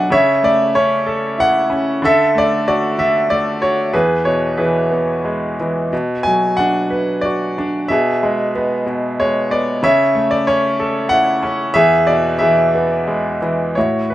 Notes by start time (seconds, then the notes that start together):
Already playing: B2 F#3 D4 F#4 D5 E5 F#5 G#5
0.10 C#3 C#5 E5
0.43 A3 D5
0.75 C#4 C#5
1.06 A4
1.38 E4 F#5
1.70 C#4
2.02 D3 A4 E5
2.35 A3 D5
2.68 F#4 D5
2.98 D3 E5
3.30 A3 D5
3.62 F#4 C#5
3.93 E2 G#4 B4
4.25 B2 C#5
4.57 E3 G#4 B4
4.91 B3
5.25 G#3
5.60 E3
5.93 B2
6.23 F#3 G#5
6.57 D4 F#5
6.90 B4
7.21 F#4 D5
7.58 D4
7.88 B2 G#4 E5
8.23 G#3
8.56 B3
8.86 B2
9.20 G#3 C#5
9.50 B3 D5
9.83 C#3 C#5 E5
10.15 A3
10.31 D5
10.47 C#4 C#5
10.80 A4
11.09 E4 F#5
11.43 C#4
11.74 E2 G#4 E5
12.07 B2 D5
12.39 E3 G#4 E5
12.75 B3
13.07 G#3
13.42 E3
13.75 A2 E4 F#4 C#5
14.10 B4